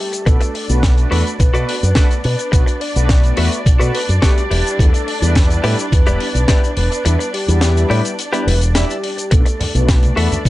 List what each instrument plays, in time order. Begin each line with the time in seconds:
Already playing: string section A3 A4, soft synth lead G4
0.12 muted clean electric guitar stroke, closed hi-hat, shaker
0.26 fingered electric bass B1, analog polysynth A3 B3 D4 F#4 B4, string section D4 D5, soft synth lead A4, muted clean electric guitar stroke, kick, closed hi-hat, shaker
0.41 muted clean electric guitar stroke, closed hi-hat, shaker
0.54 muted clean electric guitar stroke, open hi-hat
0.69 fingered electric bass B1, analog polysynth A3 B3 D4 F#4 B4, closed hi-hat, shaker
0.83 kick, snare, closed hi-hat, shaker
0.98 closed hi-hat, shaker
1.11 fingered electric bass E2, analog polysynth A3 B3 D4 F#4 B4, clean electric guitar F#4 A4 B4 D5, soft synth lead A4, open hi-hat
1.27 closed hi-hat, shaker
1.39 fingered electric bass B1, soft synth lead B4, kick, closed hi-hat, shaker
1.54 fingered electric bass B2, analog polysynth A3 B3 D4 F#4 B4, clean electric guitar F#4 A4 B4 D5, closed hi-hat, shaker
1.69 open hi-hat
1.83 fingered electric bass F#2, closed hi-hat, shaker
1.95 analog polysynth A3 B3 D4 F#4 B4, clean electric guitar F#4 A4 B4 D5, kick, snare, closed hi-hat, shaker
2.11 closed hi-hat, shaker
2.24 fingered electric bass B2, soft synth lead B4, open hi-hat
2.39 muted clean electric guitar stroke, closed hi-hat, shaker
2.52 fingered electric bass B1, analog polysynth A3 B3 D4 F#4 B4, muted clean electric guitar stroke, kick, closed hi-hat, shaker
2.66 muted clean electric guitar stroke, closed hi-hat, shaker
2.80 soft synth lead D5, muted clean electric guitar stroke, open hi-hat
2.95 fingered electric bass B1, analog polysynth A3 B3 D4 F#4 B4, closed hi-hat, shaker
3.09 soft synth lead D5, kick, snare, closed hi-hat, shaker
3.23 closed hi-hat, shaker
3.37 fingered electric bass E2, analog polysynth A3 B3 D4 F#4 B4, clean electric guitar F#4 A4 B4 E5, open hi-hat
3.52 closed hi-hat, shaker
3.66 fingered electric bass B1, kick, closed hi-hat, shaker
3.79 fingered electric bass B2, analog polysynth A3 B3 D4 F#4 B4, clean electric guitar F#4 A4 B4 D5, closed hi-hat, shaker
3.95 soft synth lead B4, open hi-hat
4.09 fingered electric bass F#2, closed hi-hat, shaker
4.22 analog polysynth A3 B3 D4 F#4 B4, clean electric guitar F#4 A4 B4 D5, soft synth lead G4, kick, snare, closed hi-hat, shaker
4.38 closed hi-hat, shaker
4.50 fingered electric bass E1, clean electric guitar E4 G4 B4 D5, open hi-hat
4.67 closed hi-hat, shaker
4.79 fingered electric bass E2, analog polysynth G3 B3 D4 E4 B4, soft synth lead A4, kick, closed hi-hat, shaker
4.93 muted clean electric guitar stroke, closed hi-hat, shaker
5.07 muted clean electric guitar stroke, open hi-hat
5.22 fingered electric bass E2, analog polysynth G3 B3 D4 E4 B4, closed hi-hat, shaker
5.35 kick, snare, closed hi-hat, shaker
5.50 closed hi-hat, shaker
5.63 fingered electric bass A2, analog polysynth G3 B3 D4 E4 B4, clean electric guitar E4 G4 B4 D5, soft synth lead A4, open hi-hat
5.79 closed hi-hat, shaker
5.92 fingered electric bass E2, soft synth lead B4, kick, closed hi-hat, shaker
6.06 fingered electric bass E1, analog polysynth G3 B3 D4 E4 B4, clean electric guitar E4 G4 B4 D5, closed hi-hat, shaker
6.20 open hi-hat
6.35 fingered electric bass B1, closed hi-hat, shaker
6.48 analog polysynth G3 B3 D4 E4 B4, clean electric guitar E4 G4 B4 D5, kick, snare, closed hi-hat, shaker
6.64 closed hi-hat, shaker
6.77 fingered electric bass E1, soft synth lead B4, open hi-hat
6.91 muted clean electric guitar stroke, closed hi-hat, shaker
7.05 fingered electric bass E2, analog polysynth G3 B3 D4 E4 B4, muted clean electric guitar stroke, closed hi-hat, shaker
7.19 muted clean electric guitar stroke, closed hi-hat, shaker
7.33 soft synth lead G4, muted clean electric guitar stroke, open hi-hat
7.48 fingered electric bass E2, analog polysynth G3 B3 D4 E4 B4, closed hi-hat, shaker
7.61 soft synth lead G4, snare, closed hi-hat, shaker
7.77 closed hi-hat, shaker
7.90 fingered electric bass A2, analog polysynth G3 B3 D4 E4 B4, clean electric guitar E4 G4 B4 D5, open hi-hat
8.05 closed hi-hat, shaker
8.19 closed hi-hat, shaker
8.32 analog polysynth G3 B3 D4 E4 B4, clean electric guitar E4 G4 B4 D5, closed hi-hat, shaker
8.47 fingered electric bass E1, soft synth lead B4, open hi-hat
8.61 closed hi-hat, shaker
8.75 analog polysynth G3 B3 D4 E4 D5, clean electric guitar E4 G4 B4 E5, soft synth lead G4, snare, closed hi-hat, shaker
8.90 closed hi-hat, shaker
9.04 open hi-hat
9.17 muted clean electric guitar stroke, closed hi-hat, shaker
9.31 fingered electric bass B1, analog polysynth A3 B3 D4 F#4 B4, string section D4 D5, soft synth lead A4, muted clean electric guitar stroke, kick, closed hi-hat, muted conga, shaker
9.45 muted clean electric guitar stroke, closed hi-hat, shaker
9.60 muted clean electric guitar stroke, open hi-hat, muted conga, low conga
9.75 fingered electric bass B1, analog polysynth A3 B3 D4 F#4 B4, closed hi-hat, high conga, shaker
9.89 kick, snare, closed hi-hat, shaker
10.03 closed hi-hat, muted conga, high conga, shaker
10.16 fingered electric bass E2, analog polysynth A3 B3 D4 F#4 B4, clean electric guitar F#4 A4 B4 E5, soft synth lead A4, open hi-hat
10.31 closed hi-hat, muted conga, low conga, shaker
10.45 fingered electric bass B1, soft synth lead B4, kick